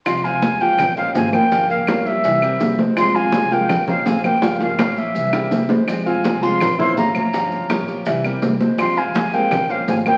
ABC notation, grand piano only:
X:1
M:4/4
L:1/8
Q:1/4=165
K:Fm
V:1 name="Grand piano"
z [F,Ff]2 [F,Ff]2 [B,Bc] [F,Ff]2 | [F,Ff]2 [B,Bd]2 [=E,=E=e] [G,GB]2 [A,c]- | [A,c] [F,Ff]2 [F,Ff]2 [B,Bc] [F,Ff]2 | [F,Ff]2 [B,Bd]2 [=E,=E=e] [G,GB]2 [A,c]- |
[A,c] [F,Ff]2 [F,Ff]2 [B,Bc] [F,Ff]2 | [F,Ff]2 [B,Bd]2 [=E,=E=e] [G,GB]2 [A,c]- | [A,c] [F,Ff]2 [F,Ff]2 [B,Bc] [F,Ff]2 |]